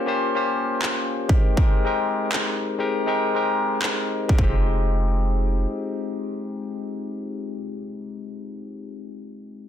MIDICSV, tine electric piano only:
0, 0, Header, 1, 2, 480
1, 0, Start_track
1, 0, Key_signature, -4, "minor"
1, 0, Tempo, 375000
1, 93, Time_signature, 4, 2, 24, 8
1, 12397, End_track
2, 0, Start_track
2, 0, Title_t, "Tine electric piano"
2, 0, Program_c, 0, 4
2, 0, Control_c, 0, 64, 127
2, 0, Note_on_c, 0, 58, 87
2, 0, Note_on_c, 0, 61, 82
2, 0, Note_on_c, 0, 65, 82
2, 0, Note_on_c, 0, 67, 80
2, 0, Note_on_c, 0, 72, 95
2, 82, Note_off_c, 0, 58, 0
2, 82, Note_on_c, 0, 58, 92
2, 89, Note_off_c, 0, 61, 0
2, 89, Note_on_c, 0, 61, 83
2, 96, Note_off_c, 0, 65, 0
2, 96, Note_on_c, 0, 65, 82
2, 102, Note_off_c, 0, 67, 0
2, 102, Note_on_c, 0, 67, 82
2, 108, Note_off_c, 0, 72, 0
2, 108, Note_on_c, 0, 72, 101
2, 420, Note_off_c, 0, 58, 0
2, 424, Note_off_c, 0, 61, 0
2, 427, Note_off_c, 0, 65, 0
2, 430, Note_off_c, 0, 67, 0
2, 433, Note_off_c, 0, 72, 0
2, 443, Note_on_c, 0, 58, 84
2, 450, Note_on_c, 0, 61, 77
2, 456, Note_on_c, 0, 65, 76
2, 463, Note_on_c, 0, 67, 77
2, 469, Note_on_c, 0, 72, 93
2, 594, Note_off_c, 0, 58, 0
2, 597, Note_off_c, 0, 61, 0
2, 600, Note_off_c, 0, 65, 0
2, 604, Note_off_c, 0, 67, 0
2, 607, Note_off_c, 0, 72, 0
2, 1642, Note_on_c, 0, 56, 87
2, 1649, Note_on_c, 0, 60, 82
2, 1656, Note_on_c, 0, 63, 81
2, 1662, Note_on_c, 0, 67, 82
2, 1668, Note_on_c, 0, 70, 96
2, 1790, Control_c, 0, 64, 0
2, 1978, Note_off_c, 0, 56, 0
2, 1981, Note_off_c, 0, 60, 0
2, 1985, Note_off_c, 0, 63, 0
2, 1988, Note_off_c, 0, 67, 0
2, 1991, Note_off_c, 0, 70, 0
2, 1999, Note_on_c, 0, 56, 91
2, 2006, Note_on_c, 0, 60, 85
2, 2012, Note_on_c, 0, 63, 82
2, 2019, Note_on_c, 0, 67, 86
2, 2025, Note_on_c, 0, 70, 100
2, 2036, Control_c, 0, 64, 127
2, 2339, Note_off_c, 0, 56, 0
2, 2342, Note_off_c, 0, 60, 0
2, 2346, Note_off_c, 0, 63, 0
2, 2349, Note_off_c, 0, 67, 0
2, 2352, Note_off_c, 0, 70, 0
2, 2363, Note_on_c, 0, 56, 87
2, 2370, Note_on_c, 0, 60, 77
2, 2376, Note_on_c, 0, 63, 76
2, 2383, Note_on_c, 0, 67, 78
2, 2389, Note_on_c, 0, 70, 92
2, 2514, Note_off_c, 0, 56, 0
2, 2517, Note_off_c, 0, 60, 0
2, 2520, Note_off_c, 0, 63, 0
2, 2524, Note_off_c, 0, 67, 0
2, 2527, Note_off_c, 0, 70, 0
2, 3563, Note_on_c, 0, 56, 88
2, 3569, Note_on_c, 0, 60, 80
2, 3576, Note_on_c, 0, 63, 82
2, 3582, Note_on_c, 0, 67, 82
2, 3588, Note_on_c, 0, 70, 99
2, 3899, Note_off_c, 0, 56, 0
2, 3902, Note_off_c, 0, 60, 0
2, 3905, Note_off_c, 0, 63, 0
2, 3908, Note_off_c, 0, 67, 0
2, 3911, Note_off_c, 0, 70, 0
2, 3921, Note_on_c, 0, 56, 90
2, 3927, Note_on_c, 0, 60, 84
2, 3934, Note_on_c, 0, 63, 85
2, 3940, Note_on_c, 0, 67, 82
2, 3947, Note_on_c, 0, 70, 98
2, 4260, Note_off_c, 0, 56, 0
2, 4263, Note_off_c, 0, 60, 0
2, 4266, Note_off_c, 0, 63, 0
2, 4270, Note_off_c, 0, 67, 0
2, 4273, Note_off_c, 0, 70, 0
2, 4281, Note_on_c, 0, 56, 83
2, 4288, Note_on_c, 0, 60, 78
2, 4295, Note_on_c, 0, 63, 74
2, 4301, Note_on_c, 0, 67, 76
2, 4307, Note_on_c, 0, 70, 90
2, 4433, Note_off_c, 0, 56, 0
2, 4436, Note_off_c, 0, 60, 0
2, 4440, Note_off_c, 0, 63, 0
2, 4443, Note_off_c, 0, 67, 0
2, 4446, Note_off_c, 0, 70, 0
2, 5482, Note_on_c, 0, 56, 86
2, 5488, Note_on_c, 0, 60, 78
2, 5495, Note_on_c, 0, 63, 78
2, 5502, Note_on_c, 0, 67, 80
2, 5508, Note_on_c, 0, 70, 95
2, 5558, Note_off_c, 0, 56, 0
2, 5574, Note_on_c, 0, 56, 78
2, 5578, Note_off_c, 0, 60, 0
2, 5593, Note_on_c, 0, 60, 72
2, 5597, Note_off_c, 0, 63, 0
2, 5612, Note_on_c, 0, 63, 74
2, 5616, Note_off_c, 0, 67, 0
2, 5619, Note_off_c, 0, 70, 0
2, 5632, Control_c, 0, 64, 0
2, 5632, Note_on_c, 0, 65, 73
2, 5650, Note_on_c, 0, 67, 86
2, 5733, Control_c, 0, 64, 127
2, 5870, Control_c, 0, 64, 0
2, 6126, Control_c, 0, 64, 127
2, 9639, Note_off_c, 0, 56, 0
2, 9659, Note_off_c, 0, 60, 0
2, 9677, Note_off_c, 0, 63, 0
2, 9697, Note_off_c, 0, 65, 0
2, 9716, Note_off_c, 0, 67, 0
2, 12397, End_track
0, 0, End_of_file